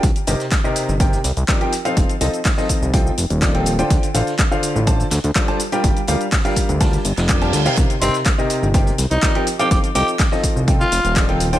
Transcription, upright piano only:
\new Staff \with { instrumentName = "Upright piano" } { \time 4/4 \key c \dorian \tempo 4 = 124 r8 <c c' ees' g' bes' ees''>16 r8 <c c' ees' g' bes' ees''>8 r16 <c c' ees' g' bes' g''>16 r8. <f c' ees' g' bes' d''>16 <f c' ees' g' bes' g''>16 r16 <f c' ees' f' a' f''>16~ | <f c' ees' f' a' f''>16 r16 <f c' ees' f' a' ees''>16 r8 <f c' ees' f' a' ees''>8 r16 <f c' ees' f' a' g''>16 r8. <f c' ees' f' a' d''>16 <f c' ees' f' a' g''>16 r16 <d d' f' a' c'' g''>16~ | <d d' f' a' c'' g''>16 r16 <d d' f' a' c'' f''>16 r8 <d d' f' a' c'' f''>8 r16 <d d' f' a' c'' a''>16 r8. <g d' f' a' c'' d''>16 <g d' f' a' c'' a''>16 r16 <g d' f' g' bes' g''>16~ | <g d' f' g' bes' g''>16 r16 <g d' f' g' bes' f''>16 r8 <g d' f' g' bes' f''>8 r16 <g d' f' g' bes' a''>16 r8. <g d' f' g' bes' d''>16 <g d' f' g' bes' a''>16 r16 <c c' ees' g' bes' f''>16~ |
<c c' ees' g' bes' f''>16 r16 <c c' ees' g' bes' ees''>16 r8 <c c' ees' g' bes' ees''>8 r16 <c c' ees' g' bes' g''>16 r8. <f c' ees' g' bes' d''>16 <f c' ees' g' bes' g''>16 r16 <f c' ees' f' a' f''>16~ | <f c' ees' f' a' f''>16 r16 <f c' ees' f' a' ees''>16 r8 <f c' ees' f' a' ees''>8 r16 <f c' ees' f' a' g''>16 r8. <f c' ees' f' a' d''>16 <f c' ees' f' a' g''>16 r16 <d d' f' a' c'' g''>16 | }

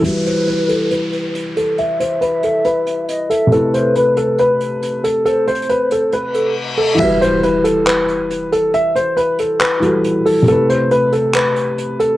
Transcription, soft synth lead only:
\new Staff \with { instrumentName = "Soft synth lead" } { \time 4/4 \key e \minor \tempo 4 = 138 b'2. r4 | e''2. dis''8 e''8 | b'2. r4 | c''2 b'8 a'8 r4 |
r1 | r1 | r1 | }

